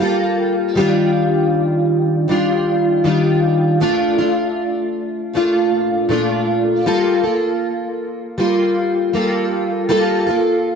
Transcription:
0.00 G3 A#3 F4 A4
0.75 D#3 G3 D4
0.80 F4
2.28 D#3 G3 D4 F4
3.04 D#3 G3 D4 F4
3.80 A#2 A3 D4 F4
4.18 A3 D4 F4
5.33 A#2 A3 D4 F4
6.09 A#2 A3 D4 F4
6.86 G3 A#3 F4 A4
7.24 A#3 F4 A4
8.38 G3 A#3 F4 A4
9.13 G3 A#3 F4 A4
9.89 G3 A#3 F4 A4
10.27 A#3 F4 A4

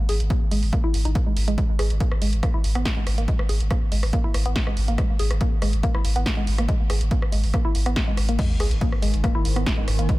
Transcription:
0.09 G#1 G#4, open hi-hat
0.20 G#1, closed hi-hat
0.30 A#3, kick, closed hi-hat
0.41 G#1
0.51 G#1 G#3, open hi-hat
0.63 G#1, open hi-hat
0.73 A#3, kick, closed hi-hat
0.84 G#1 E4
0.94 G#1, open hi-hat
1.05 G#1 D#4, closed hi-hat
1.15 A#3, kick, closed hi-hat
1.26 G#1 G#3
1.37 G#1, open hi-hat
1.48 G#1 G#3, closed hi-hat
1.58 G#3, kick, closed hi-hat
1.69 G#1
1.79 G#1 G#4, cross-stick, open hi-hat
1.90 G#1, closed hi-hat
2.00 A#3, kick, closed hi-hat
2.12 G#1, cross-stick
2.22 G#1 G#3, open hi-hat
2.33 G#1, closed hi-hat
2.43 A#3, kick, cross-stick, closed hi-hat
2.54 G#1 E4
2.64 G#1, open hi-hat
2.75 G#1 B3, cross-stick, closed hi-hat
2.85 kick, snare, closed hi-hat
2.97 G#1 G#3
3.07 G#1, cross-stick, open hi-hat
3.18 G#1 A#3, closed hi-hat
3.28 G#3, kick, closed hi-hat
3.39 G#1, cross-stick
3.49 G#1 G#4, open hi-hat
3.60 G#1, closed hi-hat
3.70 A#3, kick, cross-stick, closed hi-hat
3.82 G#1
3.92 G#1 G#3, open hi-hat
4.03 G#1, cross-stick, open hi-hat
4.13 A#3, kick, closed hi-hat
4.24 G#1 E4
4.34 G#1, cross-stick, open hi-hat
4.46 G#1 B3, closed hi-hat
4.56 kick, snare, closed hi-hat
4.67 G#1 G#3, cross-stick
4.77 G#1, open hi-hat
4.88 G#1 A#3, closed hi-hat
4.98 G#3, kick, cross-stick, closed hi-hat
5.09 G#1
5.19 G#1 G#4, open hi-hat
5.31 G#1, cross-stick, closed hi-hat
5.41 A#3, kick, closed hi-hat
5.52 G#1
5.62 G#1 G#3, cross-stick, open hi-hat
5.73 G#1, closed hi-hat
5.83 A#3, kick, closed hi-hat
5.95 G#1 E4, cross-stick
6.05 G#1, open hi-hat
6.16 G#1 B3, closed hi-hat
6.26 kick, cross-stick, snare, closed hi-hat
6.37 G#1 G#3
6.47 G#1, open hi-hat
6.58 G#1 A#3, cross-stick, closed hi-hat
6.69 G#3, kick, closed hi-hat
6.80 G#1
6.90 G#1 G#4, cross-stick, open hi-hat
7.01 G#1, closed hi-hat
7.11 A#3, kick, closed hi-hat
7.22 G#1, cross-stick
7.32 G#1 G#3, open hi-hat
7.43 G#1, open hi-hat
7.54 A#3, kick, cross-stick, closed hi-hat
7.65 G#1 E4
7.75 G#1, open hi-hat
7.86 G#1 B3, cross-stick, closed hi-hat
7.96 kick, snare, closed hi-hat
8.07 G#1 G#3
8.17 G#1, cross-stick, open hi-hat
8.29 G#1 A#3, closed hi-hat
8.39 G#2 D#3 G#3, kick, closed hi-hat, crash, sub drop
8.50 G#1
8.60 G#1 G#4, cross-stick, open hi-hat
8.71 G#1, closed hi-hat
8.81 A#3, kick, closed hi-hat
8.92 G#1, cross-stick
9.02 G#1 G#3, open hi-hat
9.14 G#1, closed hi-hat
9.24 A#3, kick, cross-stick, closed hi-hat
9.35 G#1 E4
9.45 G#1, open hi-hat
9.56 G#1 B3, cross-stick, closed hi-hat
9.66 kick, snare, closed hi-hat
9.77 G#1 G#3
9.88 G#1, cross-stick, open hi-hat
9.99 G#1 A#3, closed hi-hat
10.09 G#3, kick, closed hi-hat

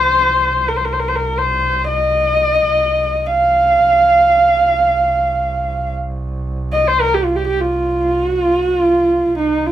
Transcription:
Already playing: C2 C5
0.68 A#4
0.77 C5
0.85 A#4
0.93 C5
0.99 A#4
1.08 C5
1.16 A#4
1.38 C5
1.88 D#5
3.26 F5
3.87 C2
6.72 D#5
6.88 C5
7.01 A#4
7.14 G4
7.25 F4
7.36 G4
7.48 G4
7.61 F4
8.24 F#4
8.41 F4
8.59 F#4
8.76 F4
9.32 C2
9.38 D#4
9.66 F4

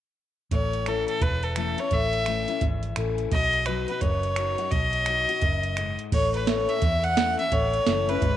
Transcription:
0.51 A1 A2 C#5, kick, closed hi-hat
0.73 closed hi-hat
0.86 E3 A3 C#4 E4 A4, finger snap, closed hi-hat
1.08 A4, closed hi-hat
1.21 E1 E2 B4, kick, closed hi-hat
1.43 A4, closed hi-hat
1.56 E3 A3 C#4 E4 A4, finger snap, closed hi-hat
1.78 C#4 E4 C#5, closed hi-hat
1.91 A1 A2 E5, kick, closed hi-hat
2.13 closed hi-hat
2.26 E3 A3 C#4 E4, finger snap, closed hi-hat
2.48 C#4 E4, closed hi-hat
2.61 G#1 E2, kick, closed hi-hat
2.83 closed hi-hat
2.96 A1 E3 A3 C#4 E4, finger snap, closed hi-hat
3.18 closed hi-hat
3.32 B1 B2 D#5, kick, closed hi-hat
3.53 closed hi-hat
3.66 F#3 B3 D#4 F#4 B4, finger snap, closed hi-hat
3.88 D#4 F#4 B4, closed hi-hat
4.01 F#1 F#2 C#5, kick, closed hi-hat
4.23 closed hi-hat
4.36 F#3 B3 D#4 F#4, finger snap, closed hi-hat
4.58 D#4 F#4, closed hi-hat
4.71 B1 B2 D#5, kick, closed hi-hat
4.93 closed hi-hat
5.06 F#3 B3 D#4 F#4, finger snap, closed hi-hat
5.29 D#4 F#4, closed hi-hat
5.42 F#1 F#2, kick, closed hi-hat
5.63 closed hi-hat
5.77 G#2, finger snap, closed hi-hat
5.99 closed hi-hat
6.12 A1 A2 C#5, kick, closed hi-hat, crash
6.34 B4, closed hi-hat
6.47 E3 A3 C#4 E4 C#5, snare, closed hi-hat
6.69 E5, closed hi-hat
6.82 E2, kick, closed hi-hat
7.03 F#5, closed hi-hat
7.17 E3 A3 C#4 E4, snare, closed hi-hat
7.38 C#4 E4 E5, closed hi-hat
7.52 A1 A2 C#5, kick, closed hi-hat
7.74 closed hi-hat
7.87 F#1 E3 A3 C#4 E4, snare, closed hi-hat
8.09 C#4 E4 B4, closed hi-hat
8.22 G#1 G#2, kick, closed hi-hat

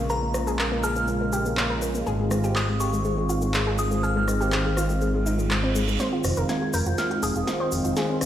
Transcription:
Already playing: A#1 C#3 G#3 A#3 F4
0.09 A#4 A#5, cabasa
0.23 A#3
0.34 A#3, cross-stick, cabasa
0.47 G#4, cabasa
0.59 A#3, clap, cabasa
0.72 A#3
0.83 G#4 F6, cabasa
0.96 A#3, cabasa
1.07 A#3, cabasa
1.21 A#3
1.33 G4, cabasa
1.45 A#3, cabasa
1.57 A#3, clap, cabasa
1.70 A#4
1.82 A#3, cabasa
1.95 A#3, cabasa
2.06 G#1 D#3 C4 F4 G#4, cabasa
2.19 G#3
2.31 G#3, cross-stick, cabasa
2.44 G4, cabasa
2.56 G#3 D#6, clap, cabasa
2.68 G#3
2.80 G4 C#6, cabasa
2.93 G#3, cabasa
3.04 G#3, cabasa
3.18 G#3
3.29 F4, cabasa
3.42 G#3, cabasa
3.54 G#3, clap, cabasa
3.67 G#4
3.78 G#3 D#6, cabasa
3.91 G#3, cabasa
4.03 G#4 F6, cabasa
4.16 G#3
4.28 G#3, cross-stick, cabasa
4.41 G4, cabasa
4.52 G#3, clap, cabasa
4.65 G#3
4.77 F4, cross-stick, cabasa
4.89 G#3, cabasa
5.01 G#3, reverse cymbal, cabasa
5.14 G#3
5.26 D#4, cabasa
5.39 G#3, cabasa
5.51 G#3, clap, cabasa
5.63 C4
5.75 G#3, cabasa
5.88 G#3, cabasa
6.00 D#3 G#3 C4 F4 C5, snare, closed hi-hat, riser, cabasa
6.13 F4
6.24 F1 F4, cross-stick, open hi-hat, cabasa
6.37 F1 A#4, closed hi-hat, cabasa
6.49 F4 G#6, snare, closed hi-hat, cabasa
6.62 F4
6.73 F1 A#4 G6, open hi-hat, cabasa
6.86 F1 F4, closed hi-hat, cabasa
6.98 F4 F6, snare, closed hi-hat, cabasa
7.11 F4, closed hi-hat
7.23 F1 G#4 D#6, open hi-hat, cabasa
7.36 F1 F4, closed hi-hat, cabasa
7.47 F4, snare, closed hi-hat, cabasa
7.60 C5
7.72 F1 F4, open hi-hat, cabasa
7.85 F1 F4, closed hi-hat, cabasa
7.96 G#4, snare, closed hi-hat, cabasa
8.09 C4
8.21 F1 C4, cross-stick, open hi-hat, cabasa

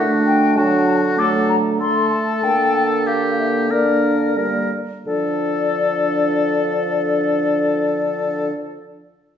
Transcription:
Already playing: D3 A3 D4 F#4
0.26 G5
0.57 F#3 D4 F#4 A5
0.87 A5
1.17 F#3 A3 A4 D6
1.49 A#5
1.80 A3 A4 C6
2.10 A5
2.43 D3 A#3 G5
2.76 G5
3.07 G4 F5
3.39 E5
3.70 A#3 D4 A#4 D5
4.36 G3 A#3 A#4
5.06 D3 F3 D4 A4 D5

